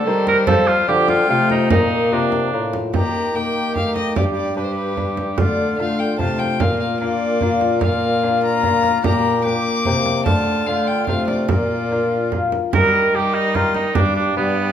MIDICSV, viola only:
0, 0, Header, 1, 2, 480
1, 0, Start_track
1, 0, Tempo, 407609
1, 561, Time_signature, 3, 2, 24, 8
1, 12562, Tempo, 410959
1, 17295, End_track
2, 0, Start_track
2, 0, Title_t, "Viola"
2, 0, Program_c, 0, 41
2, 85, Note_on_c, 0, 55, 79
2, 1021, Note_off_c, 0, 55, 0
2, 1038, Note_on_c, 0, 53, 71
2, 1509, Note_off_c, 0, 53, 0
2, 1521, Note_on_c, 0, 57, 80
2, 2010, Note_on_c, 0, 58, 73
2, 2028, Note_off_c, 0, 57, 0
2, 3223, Note_off_c, 0, 58, 0
2, 3467, Note_on_c, 0, 58, 54
2, 3914, Note_off_c, 0, 58, 0
2, 3957, Note_on_c, 0, 58, 50
2, 4434, Note_on_c, 0, 57, 49
2, 4452, Note_off_c, 0, 58, 0
2, 4914, Note_on_c, 0, 55, 52
2, 4932, Note_off_c, 0, 57, 0
2, 5379, Note_off_c, 0, 55, 0
2, 5386, Note_on_c, 0, 55, 52
2, 6342, Note_on_c, 0, 57, 55
2, 6359, Note_off_c, 0, 55, 0
2, 6815, Note_off_c, 0, 57, 0
2, 6822, Note_on_c, 0, 57, 51
2, 7288, Note_off_c, 0, 57, 0
2, 7304, Note_on_c, 0, 57, 58
2, 7780, Note_on_c, 0, 58, 56
2, 7798, Note_off_c, 0, 57, 0
2, 8251, Note_off_c, 0, 58, 0
2, 8258, Note_on_c, 0, 58, 60
2, 9189, Note_off_c, 0, 58, 0
2, 9212, Note_on_c, 0, 58, 62
2, 10620, Note_off_c, 0, 58, 0
2, 10655, Note_on_c, 0, 58, 64
2, 11118, Note_off_c, 0, 58, 0
2, 11138, Note_on_c, 0, 58, 65
2, 12085, Note_on_c, 0, 57, 58
2, 12102, Note_off_c, 0, 58, 0
2, 12559, Note_off_c, 0, 57, 0
2, 12566, Note_on_c, 0, 57, 53
2, 13031, Note_off_c, 0, 57, 0
2, 13046, Note_on_c, 0, 57, 55
2, 13529, Note_on_c, 0, 58, 55
2, 13547, Note_off_c, 0, 57, 0
2, 14747, Note_off_c, 0, 58, 0
2, 14981, Note_on_c, 0, 55, 67
2, 15424, Note_off_c, 0, 55, 0
2, 15453, Note_on_c, 0, 55, 66
2, 16387, Note_off_c, 0, 55, 0
2, 16408, Note_on_c, 0, 55, 67
2, 16874, Note_off_c, 0, 55, 0
2, 16887, Note_on_c, 0, 55, 69
2, 17295, Note_off_c, 0, 55, 0
2, 17295, End_track
0, 0, End_of_file